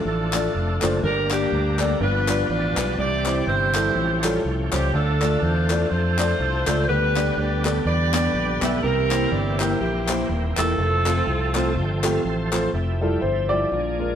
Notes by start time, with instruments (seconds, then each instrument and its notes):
Already playing: tonewheel organ F3 A3 D4 A4
0.05 fingered electric bass A1, saxophone section D4 F4 A4
0.33 upright piano A3 D4 F4 D5, clap
0.54 fingered electric bass F1
0.82 fingered electric bass F#1, upright piano A3 D4 F4 C5, clap
1.03 fingered electric bass G1, upright piano G2, tonewheel organ G3 A#3 D4 A4, saxophone section D4 G4 A#4
1.09 tonewheel organ A#4
1.30 upright piano A#3 D4 G4 D5, saxophone section A#3 D4 G4, clap
1.52 fingered electric bass D2
1.79 upright piano A#3 D4 G4 D5, saxophone section A4, clap
2.00 fingered electric bass G1, upright piano G2, tonewheel organ F3 B3 D4 G4, saxophone section D4 F4 B4
2.28 upright piano G3 D4 F4 B4, clap
2.49 fingered electric bass A1, saxophone section F4 B4 D5
2.77 fingered electric bass B1, upright piano G3 D4 F4 B4, clap
2.98 fingered electric bass C2, upright piano C3, tonewheel organ E3 G3 C4 G4, saxophone section G4 D5
3.26 upright piano G3 C4 E4 C5, clap
3.47 fingered electric bass G1, saxophone section E4 G4 C5
3.75 upright piano G3 C4 E4 A4, clap
3.95 fingered electric bass A1, upright piano A2, tonewheel organ F3 A3 C#4 G4
4.23 upright piano G3 C#4 F4 A4, clap
4.45 fingered electric bass C2
4.71 fingered electric bass C#2, upright piano G3 C#4 F4 C5, saxophone section G4, clap
4.93 fingered electric bass D2, upright piano D3, tonewheel organ A3 D4 F4 A4, saxophone section D4 F4 A4
5.21 upright piano A3 D4 F4 D5, clap
5.42 fingered electric bass E2, saxophone section F4 A4 C5
5.70 upright piano A3 D4 F4 D5, clap
5.90 fingered electric bass F2, saxophone section F4 A4 C5
6.18 upright piano A3 D4 F4 D5, clap
6.40 fingered electric bass C2
6.66 fingered electric bass C#2, upright piano A3 D4 F4 D5, clap
6.88 fingered electric bass D2, tonewheel organ D3 G3 B3 G4, upright piano D3, saxophone section D4 G4 B4
7.16 upright piano B3 D4 G4 D5, clap
7.37 fingered electric bass D2, saxophone section G4 B4 D5
7.64 upright piano B3 D4 G4 A4, clap
7.85 fingered electric bass E2, saxophone section G4 B4 D5
8.13 upright piano B3 D4 G4 D5, clap
8.34 fingered electric bass A#1
8.62 fingered electric bass B1, upright piano B3 D4 G4 E5, saxophone section A4, clap
8.83 fingered electric bass C2, upright piano C3, tonewheel organ E3 A#3 C4 G4, saxophone section E4 G4 A#4
9.10 upright piano A#3 E4 G4 C5, clap
9.32 fingered electric bass G1, saxophone section D5
9.59 upright piano A#3 E4 G4 A#4, saxophone section C5, clap
9.81 fingered electric bass A#1, saxophone section A#3 E4 G4
10.08 upright piano A#3 E4 G4 C5, clap
10.29 fingered electric bass D#1
10.57 fingered electric bass E1, upright piano A#3 E4 G4 A#4, saxophone section C4 F4 A4, clap
10.78 fingered electric bass F1, tonewheel organ F3 A3 C4 A4
11.06 upright piano A3 C4 F4 C5, clap
11.27 fingered electric bass C2
11.55 upright piano A3 C4 F4 C5, tonewheel organ A5, clap
11.76 fingered electric bass G1, tonewheel organ G5
12.03 upright piano A3 C4 F4 G4, tonewheel organ F5, clap
12.25 fingered electric bass A1, tonewheel organ C5
12.52 upright piano A3 C4 F4 C5, clap
12.73 fingered electric bass F1, tonewheel organ F3 A3 E4 G4
13.01 upright piano G3 E4 F4 A4
13.22 fingered electric bass G1, grand piano C5
13.49 upright piano G3 E4 F4 G4, grand piano D5
13.72 fingered electric bass A#1, upright piano A#2, tonewheel organ F3 A#3 D4 G#4
13.99 upright piano G#3 D4 F4 A#4